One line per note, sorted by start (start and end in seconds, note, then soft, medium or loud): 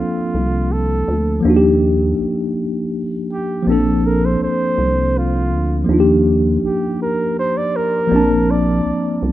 0.00 1.38 F3 medium
0.00 1.39 A#3 medium
0.00 1.40 C4 medium
0.00 1.42 D4 soft
0.00 0.74 F4 medium
0.00 1.43 A4 medium
0.34 1.04 C2 medium
0.72 1.45 A4 medium
1.08 1.41 D2 medium
1.40 3.60 F3 medium
1.40 3.62 A#3 medium
1.45 2.14 D#2 loud
1.45 3.63 D4 medium
1.45 3.64 D#4 medium
1.50 1.53 F#4 medium
1.56 3.68 G4 medium
2.19 2.26 A#1 soft
3.33 3.66 G4 medium
3.63 4.37 A#1 loud
3.63 5.83 F3 medium
3.63 5.84 A#3 soft
3.68 5.85 C4 medium
3.68 5.86 D4 medium
3.68 4.08 A4 medium
3.72 5.87 A4 medium
4.07 4.27 A#4 medium
4.26 4.42 C5 medium
4.41 4.48 C2 medium
4.41 5.19 C5 medium
4.78 5.53 C2 medium
5.18 5.90 F4 medium
5.52 5.85 D2 medium
5.84 8.05 F3 medium
5.84 8.06 A#3 medium
5.88 6.59 D#2 loud
5.88 8.07 D4 medium
5.88 8.08 D#4 medium
5.93 5.97 F4 medium
6.00 8.13 G4 medium
6.63 6.70 A#1 soft
6.63 6.99 G4 medium
7.02 7.35 A#4 medium
7.39 7.59 C5 loud
7.58 7.78 D5 loud
7.76 8.52 A#4 loud
8.07 9.32 F3 medium
8.07 9.32 A#3 medium
8.11 8.81 A#1 loud
8.11 9.32 C4 medium
8.11 9.32 D4 medium
8.16 9.32 A5 medium
8.51 9.23 D5 medium
8.86 8.93 C2 medium
9.22 9.32 C2 medium